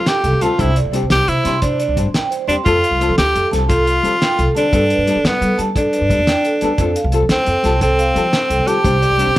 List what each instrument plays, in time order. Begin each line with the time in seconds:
0.06 tenor saxophone G4, vibraphone G5, snare, closed hi-hat
0.24 upright bass C2, vibraphone A4, closed hi-hat
0.33 upright bass D2
0.41 nylon-string guitar G3 C4 F4 A4, tenor saxophone F4, vibraphone A5, closed hi-hat
0.58 upright bass C2, nylon-string guitar G3 C4 D4 G4, tenor saxophone E4, vibraphone C5, kick, closed hi-hat
0.76 vibraphone D5, closed hi-hat
0.85 upright bass C2
0.92 nylon-string guitar G3 C4 D4 G4, vibraphone C5, closed hi-hat
1.03 upright bass C2
1.10 upright bass C2, tenor saxophone G4, snare, closed hi-hat
1.28 upright bass C3, tenor saxophone E4, vibraphone C5, closed hi-hat
1.44 upright bass C3, nylon-string guitar G3 C4 D4 G4, vibraphone C6, snare, closed hi-hat
1.62 tenor saxophone D4, vibraphone C5, kick, closed hi-hat
1.80 vibraphone D5, closed hi-hat
1.88 upright bass C2
1.96 upright bass G2, nylon-string guitar G3 C4 D4, kick, closed hi-hat
2.05 upright bass A1
2.14 vibraphone G5, snare, closed hi-hat
2.31 vibraphone C5, closed hi-hat
2.48 upright bass E2, nylon-string guitar G3 C4 D4 G4, tenor saxophone D4, vibraphone C6, closed hi-hat
2.65 upright bass F2, nylon-string guitar G3 C4 F4 A4, tenor saxophone F4, vibraphone A4, kick, closed hi-hat
2.83 vibraphone F5, closed hi-hat
2.91 upright bass C2
2.99 nylon-string guitar C4 F4 A4, vibraphone A4, muted nylon-string guitar stroke, closed hi-hat
3.09 upright bass F3
3.18 upright bass D2, tenor saxophone G4, snare, closed hi-hat
3.34 upright bass F2, vibraphone A4, closed hi-hat
3.51 upright bass C2, nylon-string guitar G3 C4 F4 A4, vibraphone A5, snare, closed hi-hat
3.69 tenor saxophone F4, vibraphone A4, kick, closed hi-hat
3.87 vibraphone F5, closed hi-hat
4.03 upright bass F3, nylon-string guitar G3 C4 F4 A4, closed hi-hat
4.21 vibraphone G5, snare, closed hi-hat
4.38 upright bass C2, vibraphone A4, closed hi-hat
4.47 upright bass D3
4.55 nylon-string guitar G3 C4 F4 A4, tenor saxophone D4, vibraphone A5, closed hi-hat
4.72 upright bass G2, nylon-string guitar G3 B3 D4 A4, vibraphone A4, kick, closed hi-hat
4.90 vibraphone B4, closed hi-hat
4.98 upright bass G2
5.07 nylon-string guitar G3 B3 A4, vibraphone A4, muted nylon-string guitar stroke, closed hi-hat
5.16 upright bass G2
5.24 upright bass G2, tenor saxophone B3, snare, closed hi-hat
5.41 upright bass G3, vibraphone A4, closed hi-hat
5.58 nylon-string guitar G3 B3 D4 A4, upright bass G3, vibraphone A5, closed hi-hat
5.75 tenor saxophone D4, vibraphone A4, kick, closed hi-hat
5.92 vibraphone B4, closed hi-hat
6.01 upright bass G2
6.09 upright bass D2, nylon-string guitar G3 B3 D4 A4, kick, closed hi-hat
6.19 upright bass E2
6.27 vibraphone G5, snare, closed hi-hat
6.45 vibraphone A4, closed hi-hat
6.61 upright bass D2, nylon-string guitar G3 B3 D4 A4, vibraphone A5, closed hi-hat
6.78 upright bass F2, nylon-string guitar C4 F4 A4, vibraphone A4, muted nylon-string guitar stroke, kick, closed hi-hat
6.95 vibraphone F5, closed hi-hat
7.04 upright bass C2
7.11 nylon-string guitar G3 C4 F4 A4, vibraphone A4, closed hi-hat
7.22 upright bass F3
7.29 upright bass D2, tenor saxophone C4, snare, closed hi-hat
7.46 upright bass F2, vibraphone A4, closed hi-hat
7.63 upright bass C2, nylon-string guitar G3 C4 F4 A4, vibraphone A5, snare, closed hi-hat
7.81 tenor saxophone C4, vibraphone A4, kick, closed hi-hat
7.99 vibraphone F5, closed hi-hat
8.14 upright bass F3, nylon-string guitar G3 C4 F4 A4, closed hi-hat
8.33 vibraphone G5, snare, closed hi-hat
8.50 upright bass C2, vibraphone A4, closed hi-hat
8.59 upright bass D3
8.66 nylon-string guitar G3 C4 F4 A4, tenor saxophone G4, vibraphone A5, closed hi-hat
8.84 upright bass C2, nylon-string guitar G3 C4 D4 G4, vibraphone C5, kick, closed hi-hat
9.01 vibraphone D5, closed hi-hat
9.10 upright bass C2
9.17 nylon-string guitar G3 C4 D4 G4, vibraphone C5, closed hi-hat
9.27 upright bass C2
9.36 upright bass C2